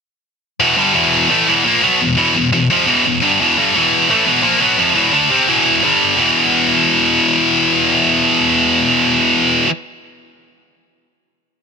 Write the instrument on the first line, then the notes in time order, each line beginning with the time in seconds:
distorted electric guitar
0.60 E2 B2 E3
0.77 G2 D3 G3
0.94 E2 B2 E3
1.30 A2 E3 A3
1.47 E2 B2 E3
1.65 A#2 F3 A#3
1.83 B2 F#3 B3
2.01 E2 B2
2.17 E2 B2 E3
2.35 E2 B2
2.53 E2 B2
2.70 F2 C3 F3
2.86 E2 B2 E3
3.06 E2 B2
3.22 G2 D3 G3
3.41 E2 B2 E3
3.58 G2 D3 G3
3.75 E2 B2 E3
4.10 A2 E3 A3
4.26 E2 B2 E3
4.43 A#2 F3 A#3
4.61 B2 F#3 B3
4.78 F2 C3 F3
4.95 E2 B2 E3
5.13 D3 A3 D4
5.30 C3 G3 C4
5.48 E2 B2 E3
5.83 G2 D3 G3
6.15 E2 B2
6.20 E3